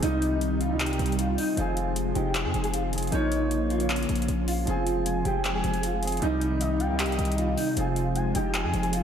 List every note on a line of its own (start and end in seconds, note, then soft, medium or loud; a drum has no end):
0.00 0.72 C2 loud
0.00 3.08 C3 medium
0.00 0.43 C3 loud
0.00 1.56 D#3 medium
0.00 0.44 G3 loud
0.00 1.56 G3 medium
0.00 0.57 D#4 loud
0.00 1.56 D#4 loud
0.00 closed hi-hat medium
0.05 0.45 D#4 loud
0.22 closed hi-hat medium
0.41 closed hi-hat medium
0.61 0.78 F4 medium
0.61 closed hi-hat medium
0.69 0.86 C#2 loud
0.69 1.17 C3 medium
0.69 1.18 G3 medium
0.73 1.19 D#4 medium
0.80 1.16 G4 medium
0.80 clap loud
0.80 closed hi-hat medium
0.85 0.99 C2 loud
0.85 closed hi-hat medium
0.93 closed hi-hat soft
0.99 1.36 C2 loud
0.99 closed hi-hat medium
1.06 closed hi-hat medium
1.12 closed hi-hat medium
1.19 1.36 F4 medium
1.19 closed hi-hat medium
1.38 1.56 D#4 medium
1.38 open hi-hat medium
1.55 2.13 F1 loud
1.55 1.92 F3 loud
1.55 4.64 F3 medium
1.55 3.11 G#3 medium
1.55 1.93 C4 medium
1.55 2.12 F4 loud
1.55 6.18 F4 loud
1.55 closed hi-hat medium
1.60 1.94 G#4 loud
1.77 closed hi-hat medium
1.96 closed hi-hat medium
2.12 2.46 F1 loud
2.12 2.38 F3 medium
2.12 2.39 C4 medium
2.12 2.43 G4 medium
2.12 closed hi-hat medium
2.16 2.40 D#4 medium
2.35 clap loud
2.35 closed hi-hat medium
2.44 2.54 F2 loud
2.44 2.62 G#4 medium
2.52 3.10 F1 loud
2.52 2.77 F3 medium
2.52 2.78 C4 medium
2.52 closed hi-hat medium
2.56 2.79 G#4 medium
2.64 2.73 G#4 medium
2.64 closed hi-hat medium
2.73 2.91 F4 medium
2.73 closed hi-hat medium
2.91 3.04 F3 medium
2.91 3.05 C4 medium
2.91 closed hi-hat medium
2.95 3.06 G#4 medium
2.95 closed hi-hat medium
3.03 closed hi-hat medium
3.07 3.53 A#3 loud
3.07 closed hi-hat medium
3.12 4.05 A#1 loud
3.12 4.66 C#3 medium
3.12 4.66 A#3 medium
3.12 3.67 D#4 loud
3.12 3.54 F4 medium
3.12 3.55 C#5 loud
3.12 closed hi-hat medium
3.32 closed hi-hat medium
3.51 closed hi-hat medium
3.70 3.88 F4 medium
3.70 closed hi-hat soft
3.78 4.26 A#3 medium
3.78 4.27 F4 medium
3.78 closed hi-hat medium
3.82 4.28 C#5 medium
3.90 4.44 C#4 medium
3.90 clap loud
3.90 closed hi-hat medium
3.96 closed hi-hat medium
4.03 closed hi-hat medium
4.09 4.28 A#1 loud
4.09 closed hi-hat medium
4.16 closed hi-hat medium
4.22 closed hi-hat medium
4.28 4.66 A#1 loud
4.28 closed hi-hat medium
4.48 4.66 F4 medium
4.48 open hi-hat medium
4.65 5.23 F1 loud
4.65 9.03 C3 medium
4.65 5.02 F3 loud
4.65 6.20 F3 medium
4.65 6.20 G#3 medium
4.65 5.03 C4 medium
4.65 5.22 F4 loud
4.65 closed hi-hat medium
4.69 5.04 G#4 loud
4.87 closed hi-hat medium
5.06 5.24 G#5 medium
5.06 closed hi-hat medium
5.23 5.62 F1 loud
5.23 5.48 F3 medium
5.23 5.49 C4 medium
5.23 5.52 G4 medium
5.23 5.43 G5 medium
5.23 closed hi-hat medium
5.27 5.50 G#4 medium
5.44 6.18 G#5 loud
5.44 clap loud
5.44 closed hi-hat medium
5.54 5.72 G#4 medium
5.63 6.20 F1 loud
5.63 5.87 F3 medium
5.63 5.88 C4 medium
5.63 closed hi-hat medium
5.67 5.89 G#4 medium
5.73 5.82 G#4 medium
5.73 closed hi-hat medium
5.83 6.01 F4 medium
5.83 closed hi-hat medium
6.01 6.14 F3 medium
6.01 6.15 C4 medium
6.01 closed hi-hat medium
6.05 6.16 G#4 medium
6.05 closed hi-hat medium
6.12 closed hi-hat medium
6.17 6.62 C3 loud
6.17 closed hi-hat medium
6.22 6.91 C2 loud
6.22 7.75 D#3 medium
6.22 6.63 G3 loud
6.22 7.75 G3 medium
6.22 7.75 D#4 loud
6.22 6.77 D#4 loud
6.22 6.64 D#4 loud
6.22 closed hi-hat medium
6.41 closed hi-hat medium
6.61 6.79 D#5 medium
6.61 closed hi-hat medium
6.80 6.98 F4 medium
6.80 6.98 G5 medium
6.80 closed hi-hat medium
6.88 7.06 C#2 loud
6.88 7.36 C3 medium
6.88 7.37 G3 medium
6.92 7.38 D#4 medium
6.99 7.36 G4 medium
6.99 7.73 D#5 loud
6.99 clap loud
6.99 closed hi-hat medium
7.04 7.18 C2 loud
7.04 closed hi-hat medium
7.12 closed hi-hat soft
7.19 7.56 C2 loud
7.19 closed hi-hat medium
7.25 closed hi-hat medium
7.32 closed hi-hat medium
7.38 7.56 F4 medium
7.38 closed hi-hat medium
7.57 7.75 D#4 medium
7.57 open hi-hat medium
7.75 8.33 F1 loud
7.75 8.12 F3 loud
7.75 9.03 F3 medium
7.75 9.03 G#3 medium
7.75 8.13 C4 medium
7.75 9.03 F4 loud
7.75 8.31 F4 loud
7.75 closed hi-hat medium
7.79 8.14 G#4 loud
7.96 closed hi-hat medium
8.15 8.34 G#5 medium
8.15 closed hi-hat medium
8.32 8.65 F1 loud
8.32 8.57 F3 medium
8.32 8.58 C4 medium
8.32 8.62 G4 medium
8.32 8.53 G5 medium
8.32 closed hi-hat medium
8.36 8.59 D#4 medium
8.54 9.03 G#5 medium
8.54 clap loud
8.54 closed hi-hat medium
8.64 8.73 F2 loud
8.64 8.82 G#4 medium
8.72 9.03 F1 loud
8.72 8.96 F3 medium
8.72 8.97 C4 medium
8.72 closed hi-hat medium
8.76 8.98 G#4 medium
8.83 8.92 G#4 medium
8.83 closed hi-hat medium
8.93 9.03 F4 medium
8.93 closed hi-hat medium